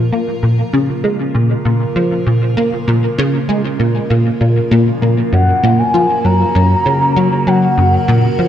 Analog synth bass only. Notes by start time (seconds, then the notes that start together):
Already playing: A#2
0.12 A#3
0.43 A#2
0.73 C#3
1.04 G#3
1.35 A#2
1.65 A#2
1.96 F3
2.26 A#2
2.57 A#3
2.88 A#2
3.18 C#3
3.49 G#3
3.79 A#2
4.10 A#2
4.41 A#2
4.71 A#2
5.02 A#2
5.32 F#2
5.63 A#2
5.94 F3
6.24 F#2
6.55 F#2
6.86 C#3
7.16 F#3
7.47 F#3
7.78 F#2
8.08 A#2
8.39 F3